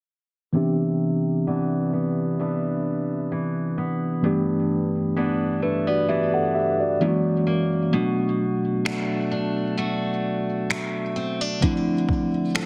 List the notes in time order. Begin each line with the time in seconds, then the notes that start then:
0.53 C3 E3 B3 C4 D4 G4
1.47 E3 B3 D4
1.93 B3
2.39 E3 B3 D4
3.32 E3
3.78 B3
4.22 G2 E3 A3 B3 D4 G4
5.16 E3 B3 D4
5.62 A3 D4 B4
5.87 B3 F#4 D5
6.08 E3 B3 D4 G4 E5
6.34 A4 F#5
6.55 G4 E5
6.80 F#4 D5
7.00 F#2 E3 G#3 A#3 C#4 E4
7.09 F#4
7.47 A#3
7.92 B2 F#3 A3 B3 D4 F#4
8.85 A3 D4 F#4, finger snap
9.31 D4
9.78 A3 D4 F#4
10.70 A3, finger snap
11.16 C4
11.41 D4
11.61 D3 F3 A3 C4 D4 E4, kick
12.09 kick
12.55 C4 F4 A4, finger snap